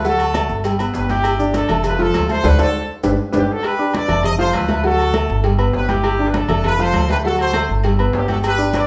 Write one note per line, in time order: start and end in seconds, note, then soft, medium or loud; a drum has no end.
0.00 0.44 D2 medium
0.05 0.29 F#3 medium
0.05 0.30 F#4 medium
0.05 0.62 F#4 medium
0.05 0.61 A4 medium
0.05 0.29 F#5 medium
0.05 cowbell loud
0.05 high conga soft
0.05 maracas medium
0.19 high conga soft
0.19 low agogo loud
0.19 maracas medium
0.34 0.59 A3 medium
0.34 0.59 A4 medium
0.34 0.59 A5 medium
0.34 cowbell medium
0.34 high conga medium
0.34 low timbale medium
0.34 low agogo loud
0.34 maracas medium
0.49 0.91 G1 loud
0.49 high conga soft
0.49 maracas soft
0.64 0.77 G3 medium
0.64 0.77 G4 medium
0.64 0.77 G5 medium
0.64 cowbell loud
0.64 high conga soft
0.64 low agogo medium
0.64 maracas medium
0.79 1.04 B3 medium
0.79 1.04 B4 medium
0.79 1.04 B5 medium
0.79 high conga soft
0.79 low agogo loud
0.79 maracas medium
0.94 1.64 G1 loud
0.94 1.08 G4 medium
0.94 1.09 B4 medium
0.94 cowbell medium
0.94 high conga soft
0.94 low timbale medium
0.94 maracas medium
1.09 1.52 E4 medium
1.09 1.51 G4 medium
1.09 1.34 G4 medium
1.09 1.34 G5 medium
1.09 1.35 G6 medium
1.09 cowbell medium
1.09 high conga medium
1.09 low agogo medium
1.09 maracas soft
1.24 cowbell loud
1.24 high conga soft
1.24 low agogo loud
1.24 maracas medium
1.39 1.64 D4 medium
1.39 1.64 D5 medium
1.39 1.64 D6 medium
1.39 high conga soft
1.39 maracas medium
1.54 1.83 D4 medium
1.54 1.83 A4 medium
1.54 cowbell medium
1.54 high conga loud
1.54 low timbale medium
1.54 low agogo medium
1.54 maracas medium
1.68 2.11 F1 loud
1.68 1.94 A3 medium
1.68 1.94 A4 medium
1.68 1.95 A5 medium
1.68 cowbell medium
1.68 high conga soft
1.68 low conga medium
1.68 low agogo loud
1.68 maracas soft
1.84 1.99 F4 medium
1.84 1.99 B4 loud
1.84 cowbell loud
1.84 high conga soft
1.84 low conga medium
1.84 low agogo medium
1.84 maracas medium
1.99 2.24 F3 loud
1.99 2.24 F4 loud
1.99 2.30 F4 medium
1.99 2.30 A4 loud
1.99 2.24 F5 medium
1.99 cowbell medium
1.99 high conga soft
2.14 2.42 D2 medium
2.14 cowbell medium
2.14 high conga medium
2.14 low timbale medium
2.14 low agogo loud
2.14 maracas medium
2.29 2.41 A3 medium
2.29 2.41 A4 medium
2.29 2.44 A4 medium
2.29 2.44 C5 loud
2.29 2.42 A5 medium
2.29 cowbell medium
2.29 high conga medium
2.29 low agogo medium
2.29 maracas soft
2.44 2.56 D2 loud
2.44 2.58 F#4 medium
2.44 2.54 A4 loud
2.44 2.60 B4 loud
2.44 2.54 C5 loud
2.44 2.54 D5 loud
2.44 cowbell medium
2.44 high conga loud
2.44 high timbale loud
2.44 maracas medium
2.59 2.70 D2 medium
2.59 2.87 F#4 medium
2.59 2.68 A4 loud
2.59 2.87 A4 medium
2.59 2.69 C5 loud
2.59 2.69 D5 loud
2.59 cowbell medium
2.59 high conga loud
2.59 high timbale medium
2.59 maracas loud
3.03 3.15 G1 loud
3.03 3.13 D4 medium
3.03 3.13 G4 medium
3.03 3.13 B4 medium
3.03 cowbell loud
3.03 high conga medium
3.03 high timbale loud
3.03 maracas loud
3.32 3.45 G1 loud
3.32 3.43 D4 loud
3.32 3.49 D4 medium
3.32 3.43 G4 medium
3.32 3.43 B4 loud
3.32 cowbell loud
3.32 high conga loud
3.32 high timbale loud
3.32 maracas medium
3.37 3.50 G4 medium
3.51 3.65 F#4 medium
3.51 3.65 A4 medium
3.63 3.95 G4 medium
3.63 3.94 B4 loud
3.63 cowbell loud
3.63 high conga soft
3.63 low agogo loud
3.79 4.04 D4 medium
3.79 4.04 D5 medium
3.79 4.04 D6 medium
3.79 high conga soft
3.94 4.25 B4 medium
3.94 4.25 D5 loud
3.94 cowbell medium
3.94 high conga loud
3.94 low timbale medium
3.94 low agogo medium
4.08 4.51 F1 loud
4.08 4.33 A3 medium
4.08 4.33 A4 medium
4.08 4.34 A5 medium
4.08 cowbell medium
4.08 high conga soft
4.08 low conga medium
4.08 low agogo loud
4.23 4.32 C5 medium
4.23 4.32 D#5 loud
4.23 cowbell loud
4.23 high conga soft
4.23 low conga medium
4.23 low agogo medium
4.38 4.63 F3 medium
4.38 4.63 F4 loud
4.38 4.53 A4 medium
4.38 4.53 C5 loud
4.38 4.64 F5 loud
4.38 cowbell medium
4.53 5.24 D2 medium
4.53 4.84 F4 medium
4.53 4.84 B4 medium
4.53 cowbell medium
4.53 high conga medium
4.53 low timbale medium
4.53 low agogo loud
4.68 4.81 A3 medium
4.68 4.81 A4 medium
4.68 4.81 A5 medium
4.68 cowbell medium
4.68 high conga medium
4.68 low agogo medium
4.84 5.09 F#3 medium
4.84 5.09 F#4 medium
4.84 5.41 F#4 medium
4.84 5.41 A4 loud
4.84 5.09 F#5 medium
4.84 cowbell loud
4.84 high conga soft
4.98 high conga soft
4.98 low agogo medium
5.14 5.38 A3 medium
5.14 5.39 A4 medium
5.14 5.39 A5 medium
5.14 cowbell medium
5.14 high conga medium
5.14 low timbale medium
5.14 low agogo loud
5.29 5.71 G1 loud
5.29 high conga soft
5.44 5.56 G3 medium
5.44 5.57 G4 medium
5.44 5.57 G5 medium
5.44 cowbell loud
5.44 high conga soft
5.44 low agogo medium
5.58 5.83 B3 medium
5.58 5.83 B4 medium
5.58 5.84 B5 medium
5.58 high conga soft
5.58 low agogo loud
5.73 6.44 G1 medium
5.73 5.89 G4 medium
5.73 5.89 B4 medium
5.73 cowbell medium
5.73 high conga soft
5.73 low timbale medium
5.88 6.27 E4 medium
5.88 6.13 G4 medium
5.88 6.28 G4 loud
5.88 6.13 G5 medium
5.88 6.14 G6 medium
5.88 cowbell medium
5.88 high conga medium
5.88 low agogo medium
6.04 cowbell loud
6.04 high conga soft
6.04 low agogo loud
6.19 6.44 D4 medium
6.19 6.44 D5 medium
6.19 6.44 D6 medium
6.19 high conga soft
6.28 6.35 B4 medium
6.34 6.65 D4 medium
6.34 6.65 A4 medium
6.34 cowbell medium
6.34 high conga loud
6.34 low timbale medium
6.34 low agogo medium
6.49 6.91 F1 loud
6.49 6.74 A3 medium
6.49 6.74 A4 medium
6.49 6.74 A5 medium
6.49 cowbell medium
6.49 high conga soft
6.49 low conga medium
6.49 low agogo loud
6.64 6.79 F4 medium
6.64 6.79 B4 loud
6.64 cowbell loud
6.64 high conga soft
6.64 low conga medium
6.64 low agogo loud
6.79 7.04 F3 medium
6.79 7.04 F4 medium
6.79 7.10 A4 loud
6.79 7.10 C5 loud
6.79 7.04 F5 loud
6.79 cowbell medium
6.94 7.64 D2 loud
6.94 cowbell medium
6.94 high conga loud
6.94 low timbale medium
6.94 low agogo loud
7.08 7.22 A3 medium
7.08 7.17 G4 medium
7.08 7.22 A4 medium
7.08 7.16 B4 loud
7.08 7.22 A5 medium
7.08 cowbell medium
7.08 high conga medium
7.08 low agogo medium
7.25 7.49 F#3 medium
7.25 7.49 F#4 medium
7.25 7.39 F#4 medium
7.25 7.38 A4 loud
7.25 7.49 F#5 medium
7.25 cowbell loud
7.25 high conga soft
7.39 7.68 A4 medium
7.39 7.68 C5 medium
7.39 high conga soft
7.39 low agogo medium
7.53 7.79 A3 medium
7.53 7.79 A4 medium
7.53 7.79 A5 medium
7.53 cowbell medium
7.53 high conga medium
7.53 low timbale medium
7.53 low agogo loud
7.68 8.11 G1 loud
7.68 high conga soft
7.83 7.96 G3 medium
7.83 7.96 G4 medium
7.83 7.97 G5 medium
7.83 cowbell loud
7.83 high conga soft
7.83 low agogo medium
7.99 8.24 B3 medium
7.99 8.24 B4 medium
7.99 8.24 B5 medium
7.99 high conga soft
7.99 low agogo medium
8.13 8.84 G1 loud
8.13 8.29 D4 medium
8.13 8.29 G4 medium
8.13 cowbell medium
8.13 high conga soft
8.13 low timbale medium
8.28 8.53 G4 medium
8.28 8.38 A4 medium
8.28 8.53 G5 medium
8.28 8.54 G6 medium
8.28 cowbell medium
8.28 high conga medium
8.28 low agogo medium
8.32 8.38 F#4 medium
8.44 8.73 G4 medium
8.44 8.73 B4 loud
8.44 cowbell loud
8.44 high conga soft
8.44 low agogo loud
8.44 maracas medium
8.58 8.83 D4 medium
8.58 8.83 D5 medium
8.58 8.83 D6 medium
8.58 high conga soft
8.58 maracas medium
8.73 8.87 B4 medium
8.73 8.87 D5 medium
8.73 cowbell medium
8.73 high conga loud
8.73 low timbale medium
8.73 low agogo loud
8.73 maracas medium